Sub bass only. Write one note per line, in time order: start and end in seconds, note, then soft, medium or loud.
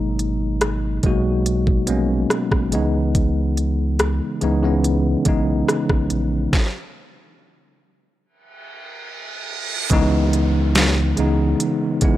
0.00 1.00 G#1 loud
1.04 1.78 B1 medium
1.89 2.25 A#1 medium
2.52 2.75 G#1 loud
2.73 4.21 C#2 loud
4.42 5.16 C#2 loud
5.26 5.63 B1 medium
5.90 6.08 A#1 medium
6.11 6.48 A#1 loud
9.91 11.14 C#2 loud
11.18 11.55 C#2 loud